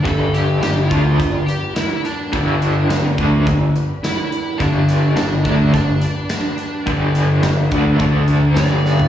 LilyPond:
<<
  \new Staff \with { instrumentName = "Lead electric guitar" } { \time 4/4 \key g \major \tempo 4 = 106 a'8 g'8 g'16. e'32 f'4 g'8 e'8 d'8~ | d'4. r4. e'4 | d'4 d'8 d'8 d'2~ | d'2. d''4 | }
  \new Staff \with { instrumentName = "Tonewheel organ" } { \time 4/4 \key g \major <g b d' b'>1 | <g b d' b'>1 | <b d' g' b'>1 | <g b d' b'>2 <a d' a'>4 <g b d' b'>4 | }
  \new Staff \with { instrumentName = "Overdriven electric guitar" } { \clef bass \time 4/4 \key g \major <g, d g>4 <g, d>8 <d a d'>8 <g, d>8 r4. | <g, d g>4 <g, d>8 <d a d'>8 <g, d>8 r4. | <g, d g>4 <g, d>8 <d a d'>8 <g, d>8 r4. | <g, d g>4 <g, d>8 <d a d'>8 <d a d'>4 <g, d g>4 | }
  \new Staff \with { instrumentName = "Fingered electric bass" } { \clef bass \time 4/4 \key g \major g,,4 g,,8 d,8 g,,8 r4. | g,,4 g,,8 d,8 g,,8 r4. | g,,4 g,,8 d,8 g,,8 r4. | g,,4 g,,8 d,8 d,4 g,,4 | }
  \new DrumStaff \with { instrumentName = "Drums" } \drummode { \time 4/4 <hh bd>8 hh8 <hh sn tamb>8 <hh bd>8 <hh bd>8 hh8 <hh sn tamb>8 hh8 | <hh bd>8 hh8 <hh sn tamb>8 <hh bd>8 <hh bd>8 hh8 <hh sn tamb>8 hh8 | <hh bd>8 <hh sn>8 <hh sn tamb>8 <hh bd>8 <hh bd>8 hh8 <hh sn tamb>8 hh8 | <hh bd>8 <hh sn>8 <hh sn tamb>8 <hh bd>8 <hh bd>8 hh8 <hh sn tamb>8 sn16 tomfh16 | }
>>